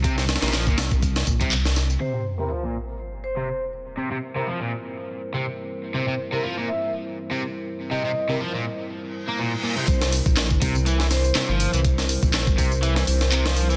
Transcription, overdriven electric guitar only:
0.04 0.15 C3 medium
0.18 0.23 C3 loud
0.42 0.53 C3 loud
0.53 0.65 F3 medium
0.67 0.78 A#2 medium
1.41 1.51 C3 loud
2.01 2.12 C3 medium
2.15 2.20 C3 medium
2.39 2.50 C3 medium
2.50 2.61 F3 medium
2.64 2.74 A#2 medium
3.37 3.48 C3 medium
3.98 4.09 C3 medium
4.11 4.17 C3 medium
4.36 4.46 C3 medium
4.47 4.58 F3 medium
4.60 4.71 A#2 medium
5.34 5.45 C3 medium
5.94 6.06 C3 medium
6.08 6.13 C3 medium
6.32 6.43 C3 medium
6.43 6.55 F3 medium
6.57 6.68 A#2 medium
7.31 7.41 C3 medium
7.91 8.02 C3 medium
8.05 8.10 C3 medium
8.29 8.40 C3 medium
8.40 8.52 F3 medium
8.54 8.64 A#2 medium
9.28 9.38 A#3 medium
9.39 9.51 A#2 medium
9.63 9.75 A#2 loud
9.77 9.86 C3 medium
10.62 10.75 C3 medium
10.86 10.98 E3 medium
11.00 11.05 E3 medium
11.35 11.48 C3 medium
11.49 11.72 F3 medium
11.73 11.79 E3 medium
12.58 12.71 C3 medium
12.83 12.94 E3 medium
12.96 13.02 E3 medium
13.32 13.45 C3 medium
13.46 13.69 F3 medium
13.70 13.76 E3 medium

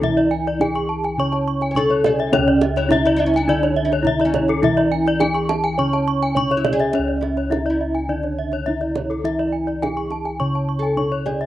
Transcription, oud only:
0.00 0.35 C#4 medium
1.71 1.77 C#5 soft
1.77 2.05 A4 medium
2.06 2.73 G#4 medium
2.77 2.92 E4 medium
2.92 3.04 D4 medium
3.05 3.15 E4 medium
3.16 3.25 D4 medium
3.26 3.36 C#4 medium
3.37 3.48 D4 medium
3.49 3.84 E4 medium
3.85 3.97 D#4 medium
3.97 4.25 D4 medium
4.25 5.48 C#4 medium
6.57 6.73 E4 medium
6.73 7.20 G#4 medium
7.21 7.69 E4 soft
7.70 9.38 E4 soft
10.79 11.25 A4 soft
11.26 11.46 G#4 medium

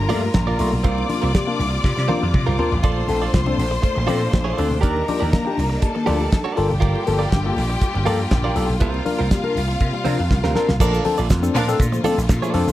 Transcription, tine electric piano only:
0.00 0.11 G2 medium
0.00 0.11 D3 medium
0.10 0.23 A3 medium
0.10 0.24 A#3 medium
0.10 0.24 F4 medium
0.35 0.48 G2 soft
0.35 0.48 D3 medium
0.59 0.73 A3 medium
0.59 0.72 A#3 medium
0.59 0.72 F4 medium
0.73 0.78 A#3 soft
0.73 0.78 F4 soft
0.84 0.98 C3 medium
0.84 0.98 G3 soft
0.98 1.02 D4 soft
0.98 1.02 F4 soft
1.09 1.23 A#3 medium
1.09 1.23 D4 medium
1.09 1.23 F4 medium
1.34 1.48 C3 medium
1.34 1.48 G3 medium
1.47 1.59 A#3 medium
1.47 1.58 D4 medium
1.47 1.58 F4 medium
1.59 1.64 D4 soft
1.59 1.64 F4 soft
1.84 1.89 D4 soft
1.84 1.89 F4 soft
1.97 2.09 C3 medium
1.97 2.09 G3 medium
2.09 2.22 A#3 medium
2.09 2.23 D4 medium
2.09 2.23 F4 medium
2.59 2.72 A#3 medium
2.59 2.72 D4 medium
2.59 2.73 F4 loud
2.84 2.97 A#2 medium
2.84 2.98 F3 soft
2.97 3.02 D4 soft
2.97 3.02 A4 soft
3.08 3.22 C4 medium
3.08 3.22 D4 medium
3.08 3.22 A4 medium
3.33 3.47 A#2 medium
3.33 3.47 F3 medium
3.46 3.59 C4 medium
3.46 3.57 D4 medium
3.46 3.57 A4 medium
3.58 3.64 D4 soft
3.58 3.64 A4 soft
3.83 3.89 D4 soft
3.83 3.89 A4 soft
3.96 4.09 A#2 medium
3.96 4.09 F3 medium
4.08 4.22 C4 medium
4.08 4.22 D4 medium
4.08 4.22 A4 medium
4.33 4.47 A#2 medium
4.33 4.47 F3 medium
4.58 4.72 C4 medium
4.58 4.71 D4 medium
4.58 4.70 A4 medium
4.72 4.76 D4 soft
4.72 4.76 A4 soft
4.83 4.97 D#3 medium
4.83 4.97 A#3 soft
4.96 5.01 F4 soft
4.96 5.01 G4 soft
5.08 5.22 D4 medium
5.08 5.22 F4 medium
5.08 5.22 G4 medium
5.33 5.47 D#3 medium
5.33 5.47 A#3 medium
5.46 5.58 D4 medium
5.46 5.57 F4 medium
5.46 5.57 G4 medium
5.58 5.63 F4 soft
5.58 5.63 G4 soft
5.83 5.88 F4 soft
5.83 5.88 G4 soft
5.96 6.08 D#3 medium
5.96 6.08 A#3 medium
6.07 6.21 D4 medium
6.07 6.21 F4 medium
6.07 6.21 G4 medium
6.57 6.71 A#3 medium
6.57 6.71 F4 medium
6.57 6.71 A4 loud
6.82 6.96 G2 medium
6.82 6.96 D3 medium
6.96 7.00 F4 soft
6.96 7.00 A4 soft
7.07 7.20 A#3 medium
7.07 7.21 F4 medium
7.07 7.21 A4 medium
7.32 7.46 G2 medium
7.32 7.46 D3 medium
7.45 7.57 A#3 medium
7.45 7.55 F4 medium
7.45 7.55 A4 medium
7.56 7.62 F4 soft
7.56 7.62 A4 soft
7.81 7.87 F4 soft
7.81 7.87 A4 soft
7.94 8.07 G2 medium
7.94 8.07 D3 medium
8.05 8.20 A#3 medium
8.05 8.20 F4 medium
8.05 8.20 A4 medium
8.31 8.45 G2 medium
8.31 8.45 D3 medium
8.55 8.69 A#3 medium
8.55 8.68 F4 medium
8.55 8.68 A4 medium
8.69 8.74 F4 soft
8.69 8.74 A4 soft
8.81 8.95 C3 soft
8.81 8.95 G3 soft
8.94 8.99 F4 soft
8.94 8.99 A#4 soft
9.05 9.19 D4 medium
9.05 9.20 F4 medium
9.05 9.20 A#4 medium
9.31 9.44 C3 medium
9.31 9.45 G3 medium
9.44 9.56 D4 medium
9.44 9.55 F4 medium
9.44 9.54 A#4 medium
9.55 9.61 F4 soft
9.55 9.61 A#4 soft
9.80 9.86 F4 soft
9.80 9.86 A#4 soft
9.93 10.06 C3 medium
9.93 10.06 G3 medium
10.05 10.19 D4 medium
10.05 10.19 F4 medium
10.05 10.19 A#4 medium
10.31 10.36 F4 soft
10.31 10.36 A#4 soft
10.44 10.56 C3 medium
10.44 10.56 G3 medium
10.55 10.69 D4 medium
10.55 10.69 F4 medium
10.55 10.69 A#4 medium
10.80 10.94 A#2 medium
10.80 10.94 F3 medium
10.93 10.98 D4 soft
10.93 10.98 A4 soft
11.05 11.18 C4 medium
11.05 11.19 D4 medium
11.05 11.19 A4 medium
11.43 11.55 C4 medium
11.43 11.55 D4 medium
11.43 11.55 A4 medium
11.55 11.68 A#2 medium
11.55 11.68 F3 medium
11.68 11.80 C4 medium
11.68 11.78 D4 medium
11.68 11.78 A4 medium
11.79 11.85 D4 soft
11.79 11.85 A4 soft
11.93 12.05 A#2 medium
11.93 12.05 F3 medium
12.04 12.18 C4 medium
12.04 12.18 D4 medium
12.04 12.18 A4 medium
12.29 12.34 D4 soft
12.29 12.34 A4 soft
12.42 12.54 A#2 medium
12.42 12.54 F3 medium
12.53 12.67 C4 medium
12.53 12.68 D4 medium
12.53 12.68 A4 medium

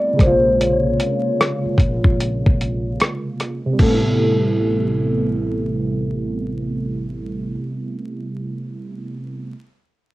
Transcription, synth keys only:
0.00 0.14 G3 medium
0.00 0.15 A3 medium
0.00 0.17 B3 medium
0.00 0.12 C4 medium
0.00 0.19 E4 medium
0.13 3.32 C#3 medium
0.13 3.34 G#3 medium
0.20 3.37 C3 soft
0.20 3.36 A#3 medium
0.27 3.39 F4 medium
3.66 7.41 C3 medium
3.73 7.48 G3 medium
3.80 7.56 A3 medium
3.87 7.63 B3 medium
3.94 7.69 E4 medium

